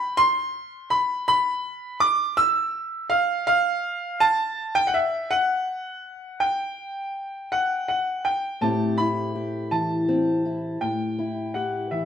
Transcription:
Already playing: upright piano B5
0.17 upright piano C6
0.90 upright piano B5
1.28 upright piano B5
2.00 upright piano D6
2.37 upright piano E6
3.10 upright piano F5
3.47 upright piano F5
4.20 upright piano A5
4.75 upright piano G5
4.87 upright piano F#5
4.94 upright piano E5
5.31 upright piano F#5
6.40 upright piano G5
7.52 upright piano F#5
7.88 upright piano F#5
8.25 upright piano G5
8.61 steel-string acoustic guitar A2 A3 C4 E4 G4, upright piano A5
8.98 steel-string acoustic guitar E4, upright piano B5
9.35 steel-string acoustic guitar G4
9.71 steel-string acoustic guitar E3, upright piano A5
10.09 steel-string acoustic guitar C4
10.45 steel-string acoustic guitar E4
10.81 steel-string acoustic guitar A2, upright piano G5
11.19 steel-string acoustic guitar E4
11.54 steel-string acoustic guitar G4, upright piano F#5
11.91 steel-string acoustic guitar E3, upright piano E5

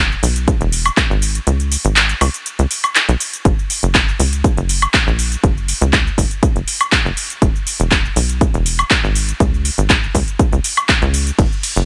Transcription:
Already playing: analog synth bass E1
0.12 shaker
0.23 analog synth bass B1, open hi-hat, shaker
0.36 closed hi-hat, shaker
0.48 kick, closed hi-hat, shaker
0.61 analog synth bass E1, closed hi-hat, shaker
0.72 open hi-hat, shaker
0.86 closed hi-hat, high woodblock, shaker
0.97 kick, clap, closed hi-hat, shaker
1.10 analog synth bass G#1, shaker
1.22 open hi-hat, shaker
1.35 closed hi-hat, shaker
1.47 analog synth bass C#2, closed hi-hat, shaker
1.60 closed hi-hat, shaker
1.72 open hi-hat, shaker
1.85 analog synth bass G#1, closed hi-hat, shaker
1.96 clap, closed hi-hat, shaker
2.09 closed hi-hat, shaker
2.21 analog synth bass C#2, open hi-hat, high woodblock, shaker
2.34 closed hi-hat, shaker
2.46 closed hi-hat, shaker
2.59 analog synth bass C#2, closed hi-hat, shaker
2.71 open hi-hat, shaker
2.84 closed hi-hat, high woodblock, shaker
2.95 clap, closed hi-hat, shaker
3.09 analog synth bass B1, closed hi-hat, shaker
3.20 open hi-hat, shaker
3.33 closed hi-hat, shaker
3.45 analog synth bass F#1, kick, closed hi-hat, shaker
3.59 shaker
3.70 open hi-hat, shaker
3.83 analog synth bass F#1, closed hi-hat, shaker
3.95 kick, clap, closed hi-hat, shaker
4.09 shaker
4.19 analog synth bass C#2, open hi-hat, shaker
4.33 closed hi-hat, shaker
4.44 kick, closed hi-hat, shaker
4.57 analog synth bass F#1, closed hi-hat, shaker
4.69 open hi-hat, shaker
4.82 closed hi-hat, high woodblock, shaker
4.94 kick, clap, closed hi-hat, shaker
5.07 analog synth bass A#1, shaker
5.19 open hi-hat, shaker
5.32 closed hi-hat, shaker
5.44 analog synth bass F#1, kick, closed hi-hat, shaker
5.57 shaker
5.68 open hi-hat, shaker
5.81 analog synth bass C#2, closed hi-hat, shaker
5.93 kick, clap, closed hi-hat, shaker
6.07 shaker
6.18 analog synth bass F#1, kick, open hi-hat, shaker
6.31 closed hi-hat, shaker
6.43 kick, closed hi-hat, shaker
6.56 analog synth bass F#1, closed hi-hat, shaker
6.68 open hi-hat, shaker
6.81 closed hi-hat, high woodblock, shaker
6.92 kick, clap, closed hi-hat, shaker
7.05 analog synth bass F#1, shaker
7.17 open hi-hat, shaker
7.30 closed hi-hat, shaker
7.42 analog synth bass E1, kick, closed hi-hat, shaker
7.56 shaker
7.67 open hi-hat, shaker
7.80 analog synth bass E1, closed hi-hat, shaker
7.91 kick, clap, closed hi-hat, shaker
8.05 shaker
8.16 analog synth bass B1, open hi-hat, shaker
8.29 closed hi-hat, shaker
8.41 kick, closed hi-hat, shaker
8.54 analog synth bass E1, closed hi-hat, shaker
8.66 open hi-hat, shaker
8.79 closed hi-hat, high woodblock, shaker
8.91 kick, clap, closed hi-hat, shaker
9.04 analog synth bass G#1, shaker
9.15 open hi-hat, shaker
9.29 closed hi-hat, shaker
9.40 analog synth bass C#2, kick, closed hi-hat, shaker
9.54 shaker
9.65 open hi-hat, shaker
9.78 analog synth bass G#1, closed hi-hat, shaker
9.90 kick, clap, closed hi-hat, shaker
10.04 shaker
10.15 analog synth bass C#2, kick, open hi-hat, shaker
10.28 closed hi-hat, shaker
10.39 kick, closed hi-hat, shaker
10.52 analog synth bass C#2, closed hi-hat, shaker
10.64 open hi-hat, shaker
10.77 closed hi-hat, high woodblock, shaker
10.89 kick, clap, closed hi-hat, shaker
11.02 analog synth bass C#2, closed hi-hat, shaker
11.14 open hi-hat, shaker
11.27 closed hi-hat, shaker
11.39 analog synth bass F#1, kick, closed hi-hat, ride, shaker
11.52 shaker
11.63 open hi-hat, ride, shaker
11.76 analog synth bass F#1, closed hi-hat, shaker

